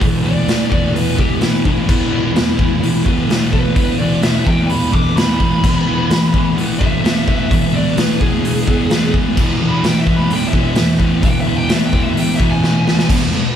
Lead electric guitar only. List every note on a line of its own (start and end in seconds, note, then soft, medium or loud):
0.25 0.70 D5 loud
0.71 0.94 D5 medium
0.95 1.18 B4 medium
1.19 1.41 G4 medium
1.41 1.64 E4 medium
1.65 3.02 E4 medium
3.52 3.98 B4 medium
3.98 4.22 D5 medium
4.23 4.46 E5 loud
4.46 4.69 G5 medium
4.70 4.93 B5 medium
4.93 5.16 D6 loud
5.17 6.53 B5 loud
6.79 7.48 E5 loud
7.52 7.74 E5 medium
7.75 7.98 D5 loud
7.97 8.20 B4 medium
8.21 9.12 G#4 loud
9.69 9.84 B5 loud
9.85 10.00 G5 loud
10.00 10.15 E5 medium
10.16 10.31 B5 loud
10.33 10.47 G5 loud
10.48 10.62 E5 loud
10.64 10.85 E5 loud
11.25 11.39 G5 loud
11.41 11.57 E5 loud
11.57 11.71 G5 loud
11.72 11.86 E5 loud
11.86 12.01 G5 medium
12.03 12.17 E5 loud
12.19 12.33 G5 loud
12.35 12.49 E5 medium
12.50 13.09 G#5 loud